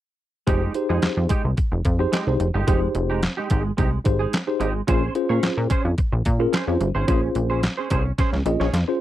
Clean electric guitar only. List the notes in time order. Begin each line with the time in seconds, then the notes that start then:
0.47 G#3 D#4 G4
0.75 muted clean electric guitar stroke
0.89 G#3 D#4 G#4
1.17 muted clean electric guitar stroke
1.29 G#3 D#4 G4
1.44 muted clean electric guitar stroke
1.57 muted clean electric guitar stroke
1.72 muted clean electric guitar stroke
1.99 muted clean electric guitar stroke
2.12 G#3 D#4 G4
2.27 muted clean electric guitar stroke
2.40 muted clean electric guitar stroke
2.54 G#3 D#4 G4
2.67 G#3 D#4 G4
2.82 muted clean electric guitar stroke
2.95 muted clean electric guitar stroke
3.10 G#3 D#4 G4
3.23 muted clean electric guitar stroke
3.37 G#3 D#4 G4
3.50 G#3 D#4 G4
3.65 muted clean electric guitar stroke
3.77 G#3 D#4 G4
3.92 muted clean electric guitar stroke
4.05 muted clean electric guitar stroke
4.19 G#3 D#4 G#4
4.47 muted clean electric guitar stroke
4.60 G#3 D#4 G4
4.75 muted clean electric guitar stroke
4.87 C#4 G#4 C5
5.15 muted clean electric guitar stroke
5.29 C#4 G#4 C#5
5.57 muted clean electric guitar stroke
5.70 C#4 G#4 C5
5.85 muted clean electric guitar stroke
5.98 muted clean electric guitar stroke
6.13 muted clean electric guitar stroke
6.40 muted clean electric guitar stroke
6.53 C#4 G#4 C5
6.68 muted clean electric guitar stroke
6.80 muted clean electric guitar stroke
6.95 C#4 G#4 C5
7.08 C#4 G#4 C5
7.23 muted clean electric guitar stroke
7.35 muted clean electric guitar stroke
7.50 C#4 G#4 C5
7.77 C#4 G#4 C5
7.90 C#4 G#4 C5
8.05 muted clean electric guitar stroke
8.18 C#4 G#4 C5
8.33 muted clean electric guitar stroke
8.46 muted clean electric guitar stroke
8.60 C#4 G#4 C#5
8.88 muted clean electric guitar stroke